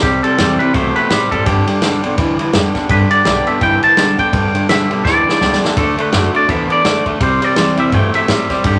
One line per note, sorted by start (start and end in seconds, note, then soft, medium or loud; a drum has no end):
0.02 0.21 C2 medium
0.02 0.22 C3 medium
0.02 0.72 C3 medium
0.02 0.22 G3 medium
0.02 0.23 G4 medium
0.02 kick loud
0.02 ride medium
0.23 0.37 C3 medium
0.23 0.38 G3 medium
0.23 0.61 A4 medium
0.23 muted upright bass stroke medium
0.23 ride medium
0.38 0.57 E2 medium
0.38 0.58 C3 medium
0.38 0.59 E3 loud
0.38 0.59 G3 medium
0.38 0.58 G3 loud
0.38 0.60 C4 loud
0.38 0.58 E4 loud
0.38 snare loud
0.38 ride loud
0.59 0.73 C3 medium
0.59 0.74 G3 medium
0.59 0.74 C4 medium
0.59 0.74 E4 medium
0.59 0.74 B4 medium
0.59 muted upright bass stroke medium
0.59 ride medium
0.74 0.93 C2 medium
0.74 1.09 B2 medium
0.74 0.94 C3 medium
0.74 0.94 A3 loud
0.74 0.95 C5 loud
0.74 kick loud
0.74 ride medium
0.96 1.09 C3 medium
0.96 1.09 A3 medium
0.96 1.29 B4 medium
0.96 ride medium
1.10 1.29 E2 medium
1.10 1.45 A2 loud
1.10 1.30 C3 medium
1.10 1.30 G3 loud
1.10 snare loud
1.10 ride loud
1.31 1.44 G2 loud
1.31 1.45 C3 medium
1.31 1.45 G3 medium
1.31 1.46 A4 medium
1.31 kick medium
1.31 ride medium
1.46 1.65 G1 medium
1.46 1.65 G2 medium
1.46 2.15 G2 loud
1.46 1.66 D3 medium
1.46 2.14 G4 medium
1.46 kick loud
1.46 ride loud
1.67 1.81 G2 medium
1.67 1.81 D3 medium
1.67 ride medium
1.82 2.01 B1 medium
1.82 2.01 G2 medium
1.82 2.02 D3 medium
1.82 2.01 D3 medium
1.82 2.03 G3 loud
1.82 2.03 B3 loud
1.82 2.02 G4 loud
1.82 snare loud
1.82 ride loud
2.03 2.16 B1 medium
2.03 2.16 G2 medium
2.03 2.17 D3 medium
2.03 2.18 B3 soft
2.03 2.17 G4 medium
2.03 ride medium
2.18 2.36 D2 loud
2.18 2.37 G2 medium
2.18 2.52 D3 medium
2.18 2.37 E3 loud
2.18 kick loud
2.18 ride medium
2.39 2.52 G2 medium
2.39 2.52 E3 medium
2.39 muted upright bass stroke medium
2.39 ride medium
2.53 2.72 F2 loud
2.53 2.73 G2 medium
2.53 2.74 D3 medium
2.53 2.73 D3 loud
2.53 2.74 G3 loud
2.53 2.75 B3 loud
2.53 2.73 G4 loud
2.53 snare loud
2.53 ride medium
2.75 2.88 G2 medium
2.75 2.88 D3 medium
2.75 2.89 B3 soft
2.75 2.89 G4 medium
2.75 kick medium
2.75 snare soft
2.75 ride medium
2.89 3.08 G1 loud
2.89 3.09 G2 medium
2.89 3.58 G2 loud
2.89 3.09 D3 medium
2.89 2.96 B4 medium
2.89 kick loud
2.89 ride medium
3.10 3.24 G2 medium
3.10 3.24 D3 medium
3.10 3.48 D5 loud
3.10 ride medium
3.25 3.44 B1 medium
3.25 3.44 G2 medium
3.25 3.46 D3 medium
3.25 3.45 D3 medium
3.25 3.46 G3 loud
3.25 3.46 B3 loud
3.25 3.45 G4 loud
3.25 snare loud
3.25 ride medium
3.46 3.60 G2 medium
3.46 3.60 D3 medium
3.46 3.61 B3 medium
3.46 3.60 G4 medium
3.46 3.62 E5 medium
3.46 ride medium
3.61 3.80 G1 medium
3.61 3.80 G2 medium
3.61 3.96 D3 medium
3.61 3.81 E3 medium
3.61 3.82 G5 loud
3.61 kick loud
3.61 ride medium
3.82 3.95 G2 medium
3.82 3.96 E3 medium
3.82 4.19 A5 loud
3.82 muted upright bass stroke medium
3.82 ride medium
3.97 4.16 B1 medium
3.97 4.16 G2 medium
3.97 4.18 D3 medium
3.97 4.16 D3 loud
3.97 4.18 G3 medium
3.97 4.18 B3 loud
3.97 4.17 G4 loud
3.97 snare loud
3.97 ride medium
4.18 4.31 D2 medium
4.18 4.31 G2 medium
4.18 4.32 D3 medium
4.18 4.33 B3 soft
4.18 4.32 G4 medium
4.18 4.66 G5 loud
4.18 kick medium
4.18 ride medium
4.33 4.52 G1 loud
4.33 4.52 G2 medium
4.33 5.02 G2 medium
4.33 4.53 D3 medium
4.33 kick loud
4.33 ride medium
4.54 4.68 G2 medium
4.54 4.68 D3 medium
4.54 muted upright bass stroke medium
4.54 ride medium
4.69 4.87 B1 loud
4.69 4.88 G2 medium
4.69 4.90 D3 loud
4.69 4.89 D3 medium
4.69 4.90 G3 loud
4.69 4.90 B3 loud
4.69 4.89 G4 loud
4.69 5.04 E5 loud
4.69 snare loud
4.69 ride medium
4.90 5.03 B1 medium
4.90 5.04 G2 medium
4.90 5.04 D3 medium
4.90 5.05 B3 medium
4.90 5.04 G4 medium
4.90 ride medium
5.05 5.24 D2 medium
5.05 5.24 G2 medium
5.05 5.39 D3 medium
5.05 5.25 E3 medium
5.05 5.58 D5 medium
5.05 kick loud
5.05 snare medium
5.26 5.40 G2 medium
5.26 5.40 E3 medium
5.26 muted upright bass stroke medium
5.26 snare medium
5.40 5.59 C#2 loud
5.40 5.60 G2 medium
5.40 5.61 D3 loud
5.40 5.60 D3 medium
5.40 5.61 G3 medium
5.40 5.62 B3 medium
5.40 5.61 G4 loud
5.40 snare medium
5.53 snare medium
5.62 5.75 G2 medium
5.62 5.75 D3 medium
5.62 5.77 B3 soft
5.62 5.76 G4 medium
5.62 snare medium
5.76 5.95 D2 loud
5.76 5.96 D3 medium
5.76 6.11 D3 medium
5.76 5.96 A3 medium
5.76 6.00 A4 medium
5.76 kick loud
5.76 ride medium
5.98 6.11 D3 medium
5.98 6.11 A3 medium
5.98 6.35 B4 loud
5.98 muted upright bass stroke medium
5.98 ride medium
6.12 6.31 F#2 medium
6.12 6.33 D3 loud
6.12 6.32 D3 medium
6.12 6.33 A3 loud
6.12 6.32 A3 medium
6.12 6.34 D4 loud
6.12 6.33 F#4 loud
6.12 snare loud
6.12 ride medium
6.34 6.47 D3 medium
6.34 6.47 A3 medium
6.34 6.49 D4 medium
6.34 6.48 F#4 medium
6.34 6.50 D5 medium
6.34 ride soft
6.49 6.67 D2 loud
6.49 6.68 D3 medium
6.49 6.83 E3 medium
6.49 6.68 B3 medium
6.49 6.71 E5 loud
6.49 kick loud
6.49 ride medium
6.70 6.83 D3 medium
6.70 6.83 B3 medium
6.70 7.05 D5 loud
6.70 muted upright bass stroke medium
6.70 ride medium
6.84 7.03 F#2 medium
6.84 7.19 D3 medium
6.84 7.04 D3 medium
6.84 7.04 A3 medium
6.84 snare loud
6.84 ride medium
7.06 7.19 D2 medium
7.06 7.19 D3 medium
7.06 7.19 A3 medium
7.06 kick medium
7.06 ride medium
7.20 7.39 C2 medium
7.20 7.40 C3 medium
7.20 7.90 C3 medium
7.20 7.40 G3 medium
7.20 7.45 C5 medium
7.20 kick loud
7.20 ride medium
7.42 7.55 C3 medium
7.42 7.55 G3 medium
7.42 7.80 D5 loud
7.42 ride medium
7.56 7.75 E2 medium
7.56 7.76 C3 medium
7.56 7.77 E3 loud
7.56 7.76 G3 medium
7.56 7.77 G3 loud
7.56 7.77 C4 loud
7.56 7.76 E4 loud
7.56 snare loud
7.56 ride loud
7.77 7.91 E2 medium
7.77 7.91 C3 medium
7.77 7.91 G3 medium
7.77 7.92 C4 medium
7.77 7.91 E4 medium
7.77 7.94 E5 medium
7.77 ride medium
7.92 8.11 G2 medium
7.92 8.27 B2 medium
7.92 8.12 C3 medium
7.92 8.12 A3 loud
7.92 8.15 G5 loud
7.92 kick loud
7.92 ride medium
8.14 8.27 C3 medium
8.14 8.27 A3 medium
8.14 8.48 E5 loud
8.14 ride medium
8.28 8.47 A2 medium
8.28 8.63 A2 medium
8.28 8.48 C3 medium
8.28 8.48 G3 medium
8.28 snare loud
8.28 ride loud
8.50 8.63 C3 medium
8.50 8.63 G3 medium
8.50 muted upright bass stroke medium
8.50 kick medium
8.50 snare soft
8.50 ride medium
8.64 8.79 G1 loud
8.64 8.79 G2 medium
8.64 8.79 D3 loud
8.64 8.79 G4 medium
8.64 kick loud
8.64 ride loud